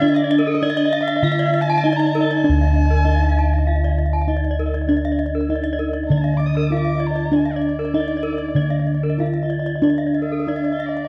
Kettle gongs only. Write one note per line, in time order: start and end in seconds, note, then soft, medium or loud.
0.00 0.59 D3 medium
0.00 1.81 D4 medium
0.62 0.70 D#4 soft
1.23 3.02 D3 medium
1.84 1.92 D#4 soft
2.44 4.23 D4 medium
2.49 6.08 D2 medium
3.05 3.13 D#4 soft
4.27 4.35 D#4 soft
4.89 6.67 D4 medium
5.49 5.57 D#4 soft
6.10 7.89 D3 medium
6.71 6.79 D#4 soft
7.32 9.14 D4 medium
7.94 8.02 D#4 soft
8.55 10.43 D3 medium
9.19 9.27 D#4 soft
9.82 11.08 D4 medium
10.47 10.55 D#4 soft